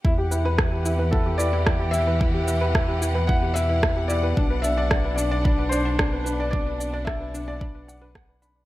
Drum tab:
SH |-x-x-x-x|-x-x-x-x|-x-x-x-x|-x-x-x-x|
SD |--r---r-|--r---r-|--r---r-|--r---r-|
BD |o-o-o-o-|o-o-o-o-|o-o-o-o-|o-o-o-o-|